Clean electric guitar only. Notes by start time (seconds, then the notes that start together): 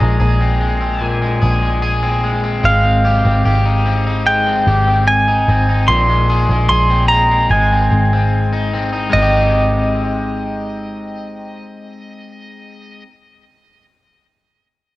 Already playing: A#2 D#4 G#4
0.00 G#3
0.20 G#4
0.40 C4
0.60 G#3
0.81 C4
1.01 A#2
1.22 G#3
1.42 G#4
1.62 G#3
1.82 G#4
2.03 C4
2.24 G#3
2.44 C4
2.63 G#3
2.84 C4
3.05 G4
3.25 C4
3.45 G4
3.65 D#4
3.85 C4
4.07 D#4
4.26 G#3
4.47 C4
4.68 G4
4.87 C4
5.28 D#4
5.49 C4
5.69 D#4
5.89 A#2
6.09 G#3
6.30 G#4
6.50 G#3
6.70 G#4
6.90 C4
7.12 G#3
7.31 C4
7.52 G#3
7.73 C4
8.13 C4
8.53 D#4
8.74 C4
8.93 D#4
9.10 G#3
9.15 C4 D#4
9.22 G4